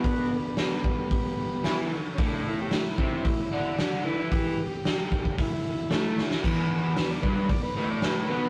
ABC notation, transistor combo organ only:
X:1
M:4/4
L:1/16
Q:1/4=113
K:Em
V:1 name="Transistor combo organ"
[B,D]2 [B,D]2 [B,D]2 [G,B,]8 z2 | [^CD]2 E G E8 z2 D E | [FG]8 E E3 E4 | z4 B d B B d B B d B2 [^AB]2 |]